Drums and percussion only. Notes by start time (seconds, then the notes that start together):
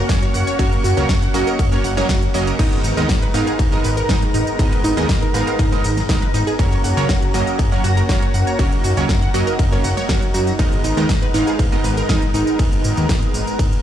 0.09 kick, snare, closed hi-hat, ride, tambourine
0.22 closed hi-hat
0.34 open hi-hat, tambourine
0.47 closed hi-hat, tambourine
0.59 kick, closed hi-hat, ride, tambourine
0.72 closed hi-hat
0.84 open hi-hat, tambourine
0.97 closed hi-hat, tambourine
1.09 kick, snare, closed hi-hat, ride, tambourine
1.22 closed hi-hat
1.34 open hi-hat, tambourine
1.47 closed hi-hat, tambourine
1.59 kick, closed hi-hat, ride, tambourine
1.72 closed hi-hat
1.84 open hi-hat, tambourine
1.97 snare, closed hi-hat, tambourine
2.09 kick, snare, closed hi-hat, ride, tambourine
2.22 closed hi-hat
2.34 open hi-hat, tambourine
2.47 closed hi-hat, tambourine
2.59 kick, closed hi-hat, crash, ride, tambourine
2.72 closed hi-hat
2.84 open hi-hat, tambourine
2.97 closed hi-hat, tambourine
3.09 kick, snare, closed hi-hat, ride, tambourine
3.22 closed hi-hat
3.34 open hi-hat, tambourine
3.47 closed hi-hat, tambourine
3.59 kick, closed hi-hat, ride, tambourine
3.72 closed hi-hat
3.84 open hi-hat, tambourine
3.97 closed hi-hat, tambourine
4.09 kick, snare, closed hi-hat, ride, tambourine
4.22 closed hi-hat
4.34 open hi-hat, tambourine
4.47 closed hi-hat, tambourine
4.59 kick, closed hi-hat, ride, tambourine
4.72 closed hi-hat
4.84 open hi-hat, tambourine
4.97 closed hi-hat, tambourine
5.09 kick, snare, closed hi-hat, ride, tambourine
5.22 closed hi-hat
5.34 open hi-hat, tambourine
5.47 closed hi-hat, tambourine
5.59 kick, closed hi-hat, ride, tambourine
5.72 closed hi-hat
5.84 open hi-hat, tambourine
5.97 snare, closed hi-hat, tambourine
6.09 kick, snare, closed hi-hat, ride, tambourine
6.22 closed hi-hat
6.34 open hi-hat, tambourine
6.47 closed hi-hat, tambourine
6.59 kick, closed hi-hat, ride, tambourine
6.72 closed hi-hat
6.84 open hi-hat, tambourine
6.97 closed hi-hat, tambourine
7.09 kick, snare, closed hi-hat, ride, tambourine
7.22 closed hi-hat
7.34 open hi-hat, tambourine
7.47 closed hi-hat, tambourine
7.59 kick, closed hi-hat, ride, tambourine
7.72 closed hi-hat
7.84 open hi-hat, tambourine
7.97 closed hi-hat, tambourine
8.09 kick, snare, closed hi-hat, ride, tambourine
8.22 closed hi-hat
8.34 open hi-hat, tambourine
8.47 closed hi-hat, tambourine
8.59 kick, closed hi-hat, ride, tambourine
8.72 closed hi-hat
8.84 open hi-hat, tambourine
8.97 closed hi-hat, tambourine
9.09 kick, snare, closed hi-hat, ride, tambourine
9.22 closed hi-hat
9.34 open hi-hat, tambourine
9.47 closed hi-hat, tambourine
9.59 kick, closed hi-hat, ride, tambourine
9.72 closed hi-hat
9.84 open hi-hat, tambourine
9.97 snare, closed hi-hat, tambourine
10.09 kick, snare, closed hi-hat, ride, tambourine
10.22 closed hi-hat
10.34 open hi-hat, tambourine
10.47 closed hi-hat, tambourine
10.59 kick, closed hi-hat, ride, tambourine
10.72 closed hi-hat
10.84 open hi-hat, tambourine
10.97 closed hi-hat, tambourine
11.09 kick, snare, closed hi-hat, ride, tambourine
11.22 closed hi-hat
11.34 open hi-hat, tambourine
11.47 closed hi-hat, tambourine
11.59 kick, closed hi-hat, ride, tambourine
11.72 closed hi-hat
11.84 open hi-hat, tambourine
11.97 closed hi-hat, tambourine
12.09 kick, snare, closed hi-hat, ride, tambourine
12.22 closed hi-hat
12.34 open hi-hat, tambourine
12.47 closed hi-hat, tambourine
12.59 kick, closed hi-hat, ride, tambourine
12.72 closed hi-hat
12.84 open hi-hat, tambourine
12.97 closed hi-hat, tambourine
13.09 kick, snare, closed hi-hat, ride, tambourine
13.22 closed hi-hat
13.34 open hi-hat, tambourine
13.47 closed hi-hat, tambourine
13.59 kick, closed hi-hat, ride, tambourine
13.72 closed hi-hat